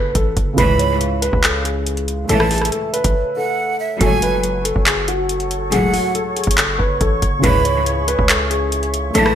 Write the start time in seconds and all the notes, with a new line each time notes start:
Already playing: F#1 F#3 F#4 A4 C#5
0.15 A1 A4, kick, closed hi-hat
0.37 F#1, kick, closed hi-hat
0.53 C#3 G#3
0.58 C#2 G#2 E3 E4 B4 B5, kick, closed hi-hat
0.62 C#5
0.79 C#5, closed hi-hat
1.01 closed hi-hat
1.22 B4, closed hi-hat
1.33 C#2, kick
1.44 A4, clap, closed hi-hat
1.65 G#4, closed hi-hat
1.87 closed hi-hat
1.97 closed hi-hat
2.08 closed hi-hat
2.25 A3 A4
2.29 A1 C#2 A2 E3 A4 C#5 A5, closed hi-hat
2.34 E5
2.40 cross-stick
2.50 G#4, closed hi-hat, open hi-hat
2.58 cross-stick, closed hi-hat
2.65 closed hi-hat
2.72 A4, closed hi-hat
2.93 B4, closed hi-hat
3.04 A1, kick, closed hi-hat
3.36 A4 F#5
3.80 E5
3.96 F#3 F#4
4.01 F#1 C#2 A2 F#3 A4 C#5 F#5 G#5 C#6, kick, closed hi-hat
4.06 C#5
4.22 B4, closed hi-hat
4.43 closed hi-hat
4.65 A4, closed hi-hat
4.76 F#1, kick
4.86 G#4, clap, closed hi-hat
5.08 F#4, closed hi-hat
5.29 closed hi-hat
5.40 closed hi-hat
5.51 closed hi-hat
5.72 C#2 A2 F#3 G#4 F#5, closed hi-hat
5.93 F#4, open hi-hat
6.15 A4, closed hi-hat
6.36 G#4, closed hi-hat
6.44 F#1, kick, closed hi-hat
6.51 closed hi-hat
6.57 A4, clap, closed hi-hat
6.79 F#1 B4, kick
7.01 A1 A4, kick, closed hi-hat
7.22 F#1, kick, closed hi-hat
7.39 C#3 G#3
7.44 C#2 G#2 E3 E4 G#4 B4 E5 B5, kick, closed hi-hat
7.48 C#5
7.65 C#5, closed hi-hat
7.86 closed hi-hat
8.08 B4, closed hi-hat
8.19 C#2, kick
8.29 A4, clap, closed hi-hat
8.50 G#4, closed hi-hat
8.72 closed hi-hat
8.83 closed hi-hat
8.94 closed hi-hat
9.10 A3 A4
9.15 A1 C#2 A2 E3 A4 C#5 A5, closed hi-hat
9.19 E5
9.26 cross-stick